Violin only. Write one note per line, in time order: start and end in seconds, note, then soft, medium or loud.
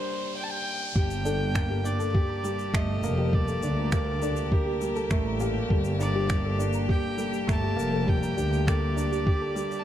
0.00 0.36 C5 loud
0.36 0.45 G5 loud
0.43 0.52 A5 medium
0.51 0.95 G5 loud
0.95 1.87 G5 loud
1.86 2.76 D5 loud
2.74 3.36 D#5 loud
3.34 3.93 D5 loud
3.94 4.54 D5 medium
4.53 5.41 A#4 medium
6.00 6.56 D5 loud
6.90 7.45 G5 loud
7.50 8.11 A5 loud
8.09 8.69 G5 loud
8.68 9.81 D5 loud
9.79 9.84 A5 medium